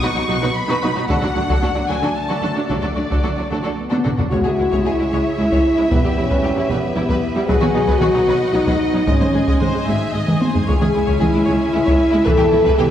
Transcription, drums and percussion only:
1.10 taiko
1.50 taiko
2.71 taiko
3.12 taiko
3.92 taiko high
4.06 taiko low-mid
4.19 taiko low
4.32 taiko
4.72 taiko
5.52 taiko
5.92 taiko
6.31 taiko
7.09 taiko
7.49 taiko
7.62 taiko mid
7.88 taiko
8.01 taiko mid
8.67 taiko
9.07 taiko
9.21 taiko mid
9.48 taiko
9.62 taiko mid
10.28 taiko mid
10.42 taiko high
10.55 taiko low
10.69 taiko
10.82 taiko mid
11.08 taiko
11.22 taiko mid
11.88 taiko
12.27 taiko
12.41 taiko mid
12.66 taiko
12.79 taiko mid

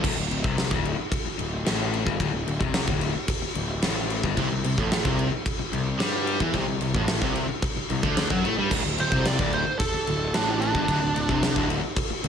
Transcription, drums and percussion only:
0.04 kick, crash
0.31 crash
0.44 kick
0.58 snare, crash
0.71 kick
0.85 crash
1.12 kick, crash
1.39 crash
1.66 snare, crash
1.94 crash
2.07 kick
2.20 kick, crash
2.48 crash
2.61 kick
2.74 snare, crash
2.88 kick
3.01 crash
3.28 kick, crash
3.55 crash
3.82 snare, crash
4.10 crash
4.24 kick
4.37 kick, crash
4.64 crash
4.78 kick
4.92 snare, crash
5.05 kick
5.19 crash
5.46 kick, crash
5.73 crash
6.00 snare, crash
6.27 crash
6.40 kick
6.54 kick, crash
6.81 crash
6.94 kick
7.08 snare, crash
7.22 kick
7.36 crash
7.62 kick, crash
7.90 crash
8.03 kick
8.17 snare, crash
8.30 kick
8.45 crash
8.71 kick, crash
8.98 crash
9.12 kick
9.25 snare, crash
9.39 kick
9.53 crash
9.80 kick, crash
10.07 crash
10.34 snare, crash
10.62 crash
10.75 kick
10.88 kick, crash
11.16 crash
11.29 kick
11.43 snare, crash
11.56 kick
11.70 crash
11.97 kick, crash
12.24 crash

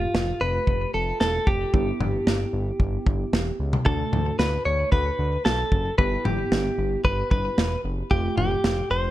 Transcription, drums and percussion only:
0.15 snare
0.67 kick
1.21 snare
1.47 kick
1.74 kick
2.00 mid tom
2.27 snare
2.80 kick
3.07 kick
3.33 snare
3.73 mid tom
3.86 kick
4.13 mid tom
4.39 snare
4.92 kick
5.46 snare
5.72 kick
5.99 kick
6.25 mid tom
6.52 snare
7.04 kick
7.31 kick
7.58 snare
8.11 kick
8.38 mid tom
8.64 snare

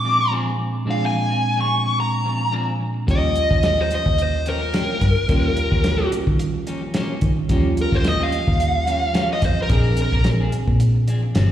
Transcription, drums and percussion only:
3.08 kick, closed hi-hat
3.36 closed hi-hat
3.51 kick
3.63 snare, closed hi-hat
3.91 closed hi-hat
4.06 kick
4.18 closed hi-hat
4.46 closed hi-hat
4.74 snare, closed hi-hat
5.01 kick, closed hi-hat
5.29 kick, closed hi-hat
5.57 closed hi-hat
5.72 kick
5.84 snare, closed hi-hat
6.12 closed hi-hat
6.27 kick
6.39 closed hi-hat
6.67 closed hi-hat
6.94 snare, closed hi-hat
7.21 kick, closed hi-hat
7.49 kick, closed hi-hat
7.77 closed hi-hat
7.92 kick
8.04 snare, closed hi-hat
8.32 closed hi-hat
8.48 kick
8.60 closed hi-hat
8.87 closed hi-hat
9.14 snare, closed hi-hat
9.42 kick, closed hi-hat
9.69 kick, closed hi-hat
9.97 closed hi-hat
10.12 kick
10.24 snare, closed hi-hat
10.52 closed hi-hat
10.68 kick
10.80 closed hi-hat
11.08 closed hi-hat
11.35 snare, closed hi-hat

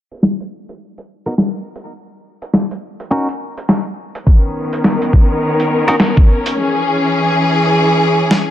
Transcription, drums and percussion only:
0.11 closed hi-hat
0.14 closed hi-hat
0.17 closed hi-hat
0.20 snare, closed hi-hat
0.23 closed hi-hat
0.27 closed hi-hat
0.32 closed hi-hat
0.36 closed hi-hat
0.40 closed hi-hat
0.69 closed hi-hat
0.98 closed hi-hat
1.27 closed hi-hat
1.38 snare
1.76 closed hi-hat
2.42 closed hi-hat
2.54 snare
2.71 closed hi-hat
3.00 closed hi-hat
3.29 closed hi-hat
3.57 closed hi-hat
3.69 snare
4.15 closed hi-hat
4.27 kick
4.73 closed hi-hat
4.84 snare
5.02 closed hi-hat
5.13 kick
5.60 closed hi-hat
5.88 closed hi-hat
6.00 snare
6.17 kick
6.46 closed hi-hat
8.31 snare

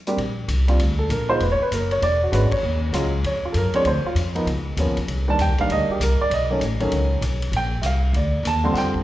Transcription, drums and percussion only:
0.07 closed hi-hat
0.18 ride
0.48 hi-hat pedal, ride
0.68 ride
0.79 ride
1.10 hi-hat pedal, ride
1.40 ride
1.72 hi-hat pedal, ride
1.91 ride
2.02 ride
2.33 hi-hat pedal, ride
2.52 kick, ride
2.93 hi-hat pedal, ride
3.24 ride
3.54 hi-hat pedal, ride
3.74 ride
3.85 ride
4.16 hi-hat pedal, ride
4.35 ride
4.47 ride
4.77 hi-hat pedal, ride
4.97 ride
5.08 ride
5.39 hi-hat pedal, ride
5.58 ride
5.70 ride
6.01 hi-hat pedal, ride
6.31 ride
6.61 hi-hat pedal, ride
6.80 ride
6.92 ride
7.22 hi-hat pedal, ride
7.42 ride
7.53 ride
7.83 hi-hat pedal, ride
8.14 ride
8.45 hi-hat pedal, ride
8.75 snare, ride
8.94 kick

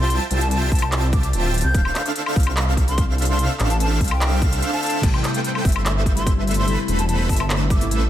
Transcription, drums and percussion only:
0.10 closed hi-hat
0.31 closed hi-hat
0.41 closed hi-hat
0.51 closed hi-hat
0.72 kick, closed hi-hat
0.75 closed hi-hat
0.79 closed hi-hat, high woodblock
0.92 clap, closed hi-hat
1.13 kick, closed hi-hat
1.23 closed hi-hat
1.33 closed hi-hat
1.54 closed hi-hat
1.58 closed hi-hat
1.61 closed hi-hat
1.74 kick, closed hi-hat
1.85 high woodblock
1.95 clap, closed hi-hat
2.06 closed hi-hat
2.16 closed hi-hat
2.26 high woodblock
2.36 kick, closed hi-hat
2.40 closed hi-hat
2.43 closed hi-hat, high woodblock
2.57 clap, closed hi-hat
2.77 kick, closed hi-hat
2.88 closed hi-hat
2.98 kick, closed hi-hat
3.18 closed hi-hat
3.22 closed hi-hat
3.25 closed hi-hat
3.39 closed hi-hat
3.60 clap, closed hi-hat
3.70 closed hi-hat
3.80 closed hi-hat
4.01 kick, closed hi-hat
4.04 closed hi-hat
4.08 closed hi-hat, high woodblock
4.21 clap, closed hi-hat
4.42 kick, closed hi-hat
4.53 closed hi-hat
4.62 closed hi-hat
4.83 closed hi-hat
4.86 closed hi-hat
4.90 closed hi-hat
5.03 kick, closed hi-hat, crash
5.14 high woodblock
5.24 clap, closed hi-hat
5.34 closed hi-hat
5.44 closed hi-hat
5.55 high woodblock
5.65 kick, closed hi-hat, open hi-hat
5.72 closed hi-hat, high woodblock
5.86 clap, closed hi-hat
6.06 kick, closed hi-hat
6.17 closed hi-hat
6.27 kick, closed hi-hat
6.47 closed hi-hat
6.51 closed hi-hat
6.54 closed hi-hat
6.68 closed hi-hat
6.88 closed hi-hat
6.99 closed hi-hat
7.09 closed hi-hat
7.29 kick, closed hi-hat, open hi-hat
7.36 closed hi-hat, high woodblock
7.50 clap, closed hi-hat
7.70 kick, closed hi-hat
7.81 closed hi-hat
7.91 closed hi-hat

